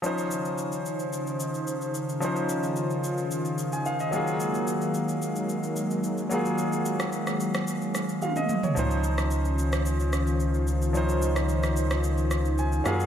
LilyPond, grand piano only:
\new Staff \with { instrumentName = "Grand piano" } { \time 4/4 \key des \major \tempo 4 = 110 << { r1 | r2 r8. aes''16 f''16 ees''8 r16 | r1 | r2. f''16 ees''8 des''16~ |
des''16 r2. r8. | r2. aes''8 f''8 | } \\ { <f des' ees' c''>1 | <f des' ees' c''>2.~ <f des' ees' c''>8 <ges bes f' aes'>8~ | <ges bes f' aes'>2.~ <ges bes f' aes'>8 <ges bes f' aes'>8~ | <ges bes f' aes'>2.~ <ges bes f' aes'>8 r8 |
<f des' ees' c''>1 | <f des' ees' c''>2.~ <f des' ees' c''>8 <ges bes f' aes'>8 | } >> }